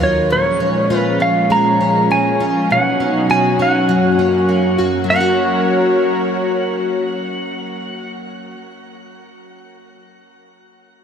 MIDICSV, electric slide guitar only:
0, 0, Header, 1, 2, 480
1, 0, Start_track
1, 0, Key_signature, 6, "major"
1, 0, Tempo, 600000
1, 242, Time_signature, 4, 2, 24, 8
1, 8831, End_track
2, 0, Start_track
2, 0, Title_t, "Electric slide guitar"
2, 0, Program_c, 0, 29
2, 28, Note_on_c, 0, 73, 76
2, 250, Note_off_c, 0, 73, 0
2, 260, Note_on_c, 0, 73, 78
2, 780, Note_off_c, 0, 73, 0
2, 780, Note_on_c, 0, 71, 78
2, 976, Note_on_c, 0, 77, 75
2, 992, Note_off_c, 0, 71, 0
2, 1215, Note_on_c, 0, 82, 86
2, 1216, Note_off_c, 0, 77, 0
2, 1690, Note_off_c, 0, 82, 0
2, 1693, Note_on_c, 0, 80, 79
2, 2174, Note_off_c, 0, 80, 0
2, 2177, Note_on_c, 0, 78, 80
2, 2643, Note_off_c, 0, 78, 0
2, 2646, Note_on_c, 0, 80, 79
2, 2892, Note_off_c, 0, 80, 0
2, 2897, Note_on_c, 0, 78, 67
2, 3818, Note_off_c, 0, 78, 0
2, 4081, Note_on_c, 0, 78, 71
2, 6485, Note_off_c, 0, 78, 0
2, 8831, End_track
0, 0, End_of_file